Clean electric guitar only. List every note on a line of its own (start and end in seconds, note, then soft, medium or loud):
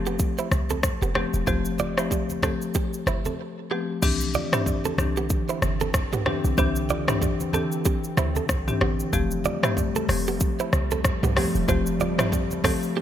0.07 0.16 B3 medium
0.07 0.15 G4 medium
0.39 0.48 E4 medium
0.39 0.47 C5 medium
0.71 0.79 C4 medium
0.71 0.79 A4 medium
1.02 1.11 B3 medium
1.02 1.11 G4 medium
1.16 1.28 B3 medium
1.16 1.27 G4 medium
1.48 1.60 F4 medium
1.48 1.59 C5 medium
1.80 1.92 F4 medium
1.80 1.91 D5 medium
1.98 2.07 E4 medium
1.98 2.07 C5 medium
2.12 2.24 C4 medium
2.12 2.23 G4 medium
2.44 2.56 C4 medium
2.44 2.55 A4 medium
2.76 2.88 C4 medium
2.76 2.87 G4 medium
3.08 3.20 E4 medium
3.08 3.19 C5 medium
3.26 3.35 C4 medium
3.26 3.34 A4 medium
3.71 3.83 B3 medium
3.71 3.83 G4 medium
4.35 4.47 F4 medium
4.35 4.47 D5 medium
4.54 4.62 E4 medium
4.54 4.62 C5 medium
4.85 4.94 C4 medium
4.85 4.94 A4 medium
5.17 5.26 B3 medium
5.17 5.26 G4 medium
5.49 5.58 E4 medium
5.49 5.58 C5 medium
5.81 5.90 C4 medium
5.81 5.90 A4 medium
6.13 6.22 B3 medium
6.13 6.22 G4 medium
6.27 6.39 B3 medium
6.27 6.38 G4 medium
6.59 6.71 E4 medium
6.59 6.70 C5 medium
6.90 7.03 F4 medium
6.90 7.02 D5 medium
7.09 7.18 E4 medium
7.09 7.17 C5 medium
7.22 7.34 C4 medium
7.22 7.34 G4 medium
7.54 7.66 C4 medium
7.54 7.66 A4 medium
7.86 7.98 C4 medium
7.86 7.98 G4 medium
8.18 8.30 E4 medium
8.18 8.30 C5 medium
8.37 8.45 C4 medium
8.37 8.45 A4 medium
8.82 8.94 B3 medium
8.82 8.93 G4 medium
9.46 9.58 F4 medium
9.46 9.57 D5 medium
9.64 9.73 E4 medium
9.64 9.73 C5 medium
9.96 10.05 C4 medium
9.96 10.04 A4 medium
10.28 10.37 B3 medium
10.28 10.36 G4 medium
10.60 10.69 E4 medium
10.60 10.68 C5 medium
10.92 11.01 C4 medium
10.92 11.00 A4 medium
11.24 11.33 B3 medium
11.24 11.32 G4 medium
11.37 11.49 B3 medium
11.37 11.49 G4 medium
11.69 11.81 F4 medium
11.69 11.81 C5 medium
12.01 12.13 F4 medium
12.01 12.13 D5 medium
12.19 12.28 E4 medium
12.19 12.28 C5 medium
12.33 12.45 C4 medium
12.33 12.44 G4 medium
12.65 12.77 C4 medium
12.65 12.76 A4 medium
12.97 13.02 C4 medium
12.97 13.02 G4 medium